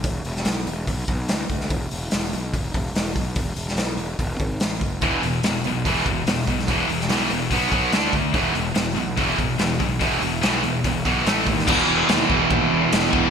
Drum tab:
CC |----------------|----------------|----------------|----------------|
HH |o-o-o-o-o-o-o-o-|o-o-o-o-o-o-o-o-|o-o-o-o-o-o-o-o-|o-o-o-o-o-o-o-o-|
SD |---oo-------o--o|----o-------o---|---oo-------o---|----o-------o--o|
BD |o-------o-o---o-|o-------o-o---o-|o-------o-o---o-|o-------o-o---o-|

CC |----------------|----------------|----------------|x---x---x---x---|
HH |o-o-o-o-o-o-o-o-|o-o-o-o-o-o-o-o-|o-o-o-o-o-o-o-o-|----------------|
SD |---oo-------o---|----o-------o---|----o-------o--o|----o-------oo--|
BD |o-------o-o---o-|o-------o-o---o-|o-------o-o---o-|o-----o-o-----o-|